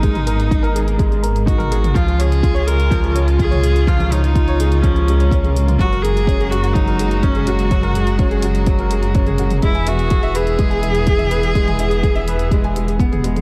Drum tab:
HH |xxxxxxxxxxxxxxxx|xxxxxxxxxxxxxxxx|xxxxxxxxxxxxxxxx|xxxxxxxxxxxxxxxx|
T2 |-o-----------o-o|-------------o--|-o-----------o-o|-------------o--|
BD |o---o---o---o---|o---o---o---o---|o---o---o---o---|o---o---o---o---|

HH |xxxxxxxxxxxxxxxx|xxxxxxxxxxxxxxxx|xxxxxxxxxxxxxxxx|
T2 |-o-----------o-o|-------------o--|-o-----------o-o|
BD |o---o---o---o---|o---o---o---o---|o---o---o---o---|